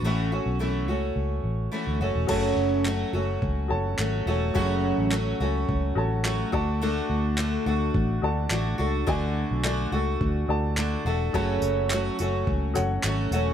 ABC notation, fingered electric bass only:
X:1
M:4/4
L:1/16
Q:"Swing 16ths" 1/4=106
K:F#m
V:1 name="Fingered electric bass" clef=bass
A,,,3 B,,,3 C,,2 C,,2 A,,,2 z D,, F,,, E,,, | F,,,2 F,,,4 F,,,2 C,,2 F,,,2 G,,,2 E,,,2 | F,,,3 A,,,3 C,,2 C,,2 A,,,4 D,,2- | D,,2 D,,4 D,,2 A,,,2 D,,2 A,,,2 C,,2 |
D,,3 B,,,3 C,,2 D,,2 D,,4 E,,,2 | F,,,2 F,,,4 F,,,2 C,,2 F,,,2 G,,,2 E,,,2 |]